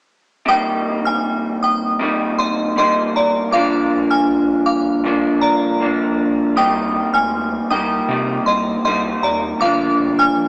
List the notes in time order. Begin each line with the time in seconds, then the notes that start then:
0.46 C3 G3 A#3 G5 D#6
0.51 D#4
1.05 G#5 F6
1.63 G5 D#6
1.99 C3 G3 A#3 D#4
2.39 D#5 C6
2.76 C3 G3 A#3 D#4 D#5 C6
3.16 D5 A#5
3.51 G2 F3 A#3 F5 D6
3.57 D4
4.10 G#5 F6
4.66 F5 D6
5.04 G2 F3 A#3
5.08 D4
5.41 D5 A#5
5.80 G2 F3 A#3
5.84 D4
6.56 C2 C3 G3 A#3 D#4 G5 D#6
7.14 D2 G#5 F6
7.70 C2 G3 A#3 D#4 G5 D#6
8.09 C3 G3 A#3 D#4
8.46 C2 D#5 C6
8.84 C2 C3 G3 A#3 D#5 C6
8.89 D#4
9.23 D#2 D5 A#5
9.60 G1 G2 F3 A#3 F5 D6
9.65 D4
9.99 G1
10.19 G#5 F6
10.36 A#1